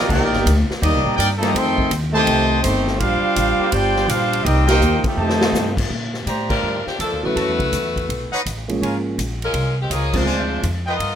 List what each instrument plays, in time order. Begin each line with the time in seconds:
Already playing: trombone section D#3 C4 A#4 D5
0.08 upright bass C2, trombone section A#3 D#4 G4, trumpet section D#4 A#4 D5 G5, kick, crash
0.21 upright bass A#1
0.33 upright bass G1, snare
0.46 upright bass D2, kick, hi-hat pedal, ride
0.71 snare
0.81 upright bass D#2, trombone section G3 A#3 D#4, trumpet section A#3 G4 D5 D#5, kick, ride
0.93 upright bass C2
1.04 upright bass A#1, trombone section D#3 C4 D4 A#4
1.17 upright bass G2, trombone section A#3 D#4 G4, trumpet section D#4 A#4 D5 G5, kick, hi-hat pedal, ride
1.38 trombone section D#3 F3 G3 A3 A#3 D#4 A4
1.42 trumpet section G4 D5 D#5 A#5, snare, ride
1.53 upright bass F2, trombone section D#3 A3 C4, trumpet section A4 D#5 G5 C6, kick, ride
1.78 kick
1.91 upright bass D#2, kick, hi-hat pedal, ride
2.12 trombone section C3 D#3 F3 A3 D#4 G4, trumpet section G4 C5 D#5 A5
2.27 upright bass C2, kick, ride
2.62 upright bass G1, trombone section D#3 A3 C4, trumpet section A3 D#4 G4 C5, kick, hi-hat pedal, ride
2.87 snare
2.99 upright bass A#1, trombone section G3 D4 F4, trumpet section D4 G4 C5 F5, kick, ride
3.22 muted upright bass stroke
3.36 upright bass A1, kick, hi-hat pedal, ride
3.59 trombone section D3 A#3 C4 G4, muted upright bass stroke
3.72 upright bass G1, trombone section G3 D4 G4, trumpet section F4 C5 D5 G5, kick, ride
3.96 snare
4.08 upright bass A#1, trombone section G3 D4 F4, trumpet section D4 G4 C5 F5, kick, hi-hat pedal, ride
4.33 ride
4.43 upright bass C2, trombone section G3 A#3 D#4, trumpet section C4 G4 A#4 D#5, kick, ride
4.67 trombone section A#3 D#4 G4, trumpet section D#4 A#4 C5 G5, snare, ride
4.80 upright bass D#2, hi-hat pedal
5.04 trombone section F3 A3 D#4 G4, muted upright bass stroke, kick, ride
5.17 upright bass F2, trombone section C3 D#3 A3, trumpet section G4 C5 D#5 A5
5.29 snare
5.41 snare
5.52 upright bass G2, snare, hi-hat pedal
5.77 kick, crash
5.90 upright bass A#2, kick
6.14 snare
6.26 upright bass A2, trumpet section G4 C5 D5 A#5, kick, hi-hat pedal, ride
6.50 saxophone section G3 D4 F4 A#4, kick, crash
6.63 upright bass G2
6.86 saxophone section F3 C4 D4 G4, muted upright bass stroke, snare
6.99 upright bass F2, saxophone section F3 A#3 D4 A4, kick, hi-hat pedal, ride
7.12 upright bass D2
7.23 upright bass A#1, grand piano E3 F#3 A3 C#4 F#4, saxophone section A3 E4 F#4 B4
7.36 upright bass F#2, trumpet section F#4 C#5 E5 A5, kick, snare, ride
7.48 upright bass E2
7.59 upright bass C#2, kick, ride
7.72 upright bass E2, kick, hi-hat pedal, ride
7.96 kick, ride
8.09 upright bass B1, kick, ride
8.32 trumpet section D#4 B4 C#5 F#5, muted upright bass stroke
8.46 upright bass A1, kick, hi-hat pedal, ride
8.68 grand piano F3 G#3 A#3 C#4 G#4, ride
8.82 upright bass G#1, trumpet section F4 A#4 C#5 G#5, kick, ride
9.18 upright bass A#1, kick, hi-hat pedal, ride
9.42 saxophone section G#3 C#4 F4 A#4, ride
9.54 upright bass C2, kick, ride
9.82 saxophone section D#3 G#3 C4 G4
9.90 upright bass C#2, trumpet section F4 A#4 C#5 D#5, kick, hi-hat pedal, ride
9.94 saxophone section F3 A#3 C#4 G#4
10.13 grand piano F3 G#3 C4 D4 G#4, saxophone section G#3 D4 F4 C5, kick, crash
10.26 upright bass D2, trumpet section F4 C5 D5 G#5
10.63 upright bass F2, kick, hi-hat pedal, ride
10.86 trumpet section F4 B4 D#5 G5, saxophone section F4 A#4 D#5
10.90 saxophone section B3
10.99 upright bass G2, kick, ride